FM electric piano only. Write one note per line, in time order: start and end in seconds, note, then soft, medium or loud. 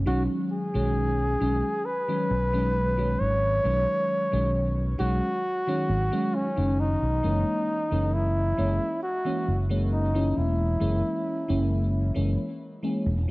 0.06 0.69 D#3 medium
0.06 0.69 F#3 medium
0.06 0.69 G#3 medium
0.06 0.69 C#4 medium
0.74 1.35 D#3 medium
0.74 1.36 F#3 medium
0.74 1.36 G#3 medium
0.74 1.36 C#4 medium
1.40 1.66 D#3 medium
1.40 1.66 F#3 medium
1.40 1.66 G#3 medium
1.40 1.67 C#4 loud
2.08 2.33 D#3 medium
2.08 2.33 F#3 medium
2.08 2.33 G#3 medium
2.08 2.33 C#4 medium
2.53 2.92 D#3 medium
2.53 2.93 F#3 medium
2.53 2.93 G#3 medium
2.53 2.93 C#4 loud
2.97 3.59 D#3 medium
2.97 3.59 F#3 medium
2.97 3.60 G#3 medium
2.97 3.60 C#4 medium
3.64 4.27 D#3 medium
3.64 4.27 F#3 medium
3.64 4.27 G#3 medium
3.64 4.27 C#4 medium
4.32 4.93 D#3 medium
4.32 4.94 F#3 medium
4.32 4.94 G#3 medium
4.32 4.94 C#4 medium
4.98 5.24 D#3 medium
4.98 5.24 F#3 medium
4.98 5.25 G#3 medium
4.98 5.25 C#4 loud
5.67 5.91 D#3 medium
5.67 5.91 F#3 medium
5.67 5.92 G#3 medium
5.67 5.92 C#4 medium
6.11 6.51 D#3 medium
6.11 6.51 F#3 medium
6.11 6.51 G#3 medium
6.11 6.52 C#4 loud
6.56 7.18 D#3 medium
6.56 7.18 F#3 medium
6.56 7.18 G#3 medium
6.56 7.18 C#4 medium
7.23 7.85 E3 medium
7.23 7.85 G#3 medium
7.23 7.86 A#3 medium
7.23 7.86 C#4 medium
7.91 8.52 E3 medium
7.91 8.52 G#3 medium
7.91 8.53 A#3 medium
7.91 8.53 C#4 medium
8.57 8.83 E3 medium
8.57 8.83 G#3 medium
8.57 8.83 A#3 medium
8.57 8.83 C#4 loud
9.25 9.49 E3 medium
9.25 9.49 G#3 medium
9.25 9.50 A#3 medium
9.25 9.50 C#4 medium
9.69 10.09 E3 medium
9.69 10.09 G#3 medium
9.69 10.09 A#3 medium
9.69 10.10 C#4 loud
10.14 10.76 E3 medium
10.14 10.76 G#3 medium
10.14 10.76 A#3 medium
10.14 10.77 C#4 medium
10.80 11.43 E3 medium
10.80 11.44 G#3 medium
10.80 11.44 A#3 medium
10.80 11.44 C#4 medium
11.48 12.10 E3 medium
11.48 12.10 G#3 medium
11.48 12.11 A#3 medium
11.48 12.11 C#4 loud
12.14 12.41 E3 medium
12.14 12.41 G#3 medium
12.14 12.41 A#3 medium
12.14 12.41 C#4 loud
12.82 13.07 E3 medium
12.82 13.07 G#3 medium
12.82 13.08 A#3 medium
12.82 13.08 C#4 medium
13.28 13.31 E3 medium